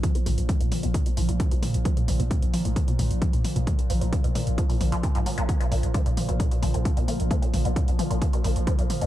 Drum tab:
HH |xxoxxxoxxxoxxxox|xxoxxxoxxxoxxxox|xxoxxxoxxooxxxox|xxoxxxoxxxoxxxox|
T2 |o-o-o-o-o-o-o-o-|o-o-o-o-o-o-o-o-|o-o-o-o-o-o-o-o-|o-o-o-o-o-o-o-o-|
BD |o---o---o---o---|o---o---o---o---|o---o---o---o---|o---o---o---o---|

HH |xxoxxxoxxxoxxxox|
T2 |o-o-o-o-o-o-o-o-|
BD |o---o---o---o---|